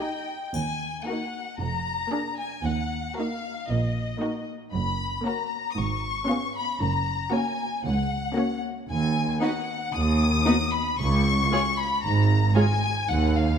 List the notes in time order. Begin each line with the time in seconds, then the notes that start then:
Already playing: D#5
0.00 D#4 G4 G5
0.54 D#2 G#5, triangle
1.01 G#5
1.07 A#3 D#4 F#4 A#4 F#5
1.59 F1 F2 A#5
2.11 A#3 D4 G#4 A#4
2.37 G#5
2.64 D#2 F#5
3.17 A#3 D#4 F#4 A#4 F5
3.68 A#1 A#2 D#5
4.20 A#3 D#4 F#4 A#4
4.73 F#1 F#2 B5
5.25 A#3 C#4 F#4 A#4 A#5
5.71 D#6
5.76 G#1 G#2 C#6
6.29 B3 C#4 F4 G#4
6.56 B5
6.81 F#1 F#2 A#5
7.33 A#3 C#4 F#4 C#5 G#5
7.84 C#2 F#5
8.37 A#3 C#4 F#4 C#5
8.89 D#2 G#5
9.41 B3 D#4 F#4 B4 F#5
9.94 D#2 D#6
10.46 B3 D#4 F#4 B4
10.73 B5
10.99 C#2 C#6
11.51 G#3 F4 G#4 C#5
11.77 B5
12.04 G#1 G#2 A#5
12.56 G#3 F4 G#4 C#5 G#5
13.09 D#2 F#5
13.37 F5